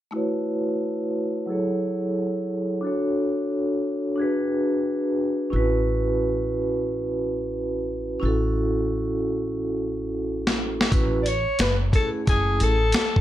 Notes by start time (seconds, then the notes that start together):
0.11 A3 E4 F#4
0.15 B4 C#5
1.46 F#3 E4 G#4
1.50 A4 C#5
2.81 D4 F#4 A4
2.87 C#5
4.16 D4 F#4
4.20 G#4 B4
5.50 A1 C#4 E4 F#4
5.56 B4
8.20 A1 C#4 E4 F#4
8.25 A4
10.47 snare
10.81 snare
10.91 A1 C#4 E4 F#4 B4, kick, closed hi-hat
11.23 D5, closed hi-hat
11.28 C#5
11.59 F#1 B4, snare, closed hi-hat
11.92 A3 C#4 E4 G#4 A4, kick, closed hi-hat
12.26 F#1 A3 C#4 E4 G#4, kick, closed hi-hat
12.60 A1 A4, closed hi-hat
12.92 snare, closed hi-hat
13.16 kick